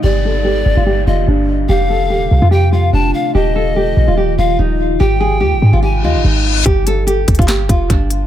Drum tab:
HH |------------------------------------------------|------------------------------------------------|------------------------------------------------|------------------------------------------------|
CP |------------------------------------------------|------------------------------------------------|------------------------------------------------|------------------------------------------------|
SD |------------------------------------------------|------------------------------------------------|------------------------------------------------|------------------------------------------------|
BD |------------------------------------------------|------------------------------------------------|------------------------------------------------|------------------------------------------------|

HH |x-----x-----x-----x-x-x-x-----x-----x-----x-----|
CP |------------------------x-----------------------|
SD |------------------------o-----------------------|
BD |o-----------------o--o--------o-----o-----------|